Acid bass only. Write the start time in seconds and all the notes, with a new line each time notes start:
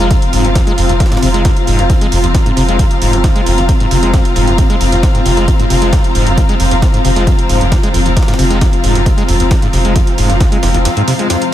0.11 F2
0.33 G#2
0.44 F2
0.55 D#2
0.67 G#3
0.78 F2
0.89 D#2
1.00 F2
1.12 G#2
1.22 C3
1.34 G#3
1.45 F2
1.67 G#2
1.79 F2
1.90 D#2
2.01 G#3
2.12 F2
2.24 D#2
2.34 F2
2.46 G#2
2.57 C3
2.68 G#3
2.79 F2
3.02 G#2
3.13 F2
3.24 D#2
3.35 G#3
3.46 F2
3.58 D#2
3.69 F2
3.80 G#2
3.91 C3
4.03 G#3
4.14 F2
4.36 G#2
4.48 F2
4.58 D#2
4.70 G#3
4.81 F2
4.92 D#2
5.03 F2
5.15 G#2
5.25 C3
5.37 G#3
5.48 F2
5.59 G#2
5.70 C3
5.82 G#3
5.93 F2
6.15 G#2
6.27 F2
6.37 D#2
6.49 G#3
6.60 F2
6.71 D#2
6.82 F2
6.94 G#2
7.05 C3
7.16 G#3
7.27 F2
7.49 G#2
7.61 F2
7.72 D#2
7.83 G#3
7.94 F2
8.06 D#2
8.16 F2
8.28 G#2
8.39 C3
8.50 G#3
8.61 F2
8.84 G#2
8.95 F2
9.06 D#2
9.18 G#3
9.28 F2
9.40 D#2
9.51 F2
9.62 G#2
9.73 C3
9.85 G#3
9.96 F2
10.18 G#2
10.30 F2
10.40 D#2
10.52 G#3
10.63 F2
10.74 D#2
10.85 F2
10.97 G#2
11.08 C3
11.19 G#3
11.30 F2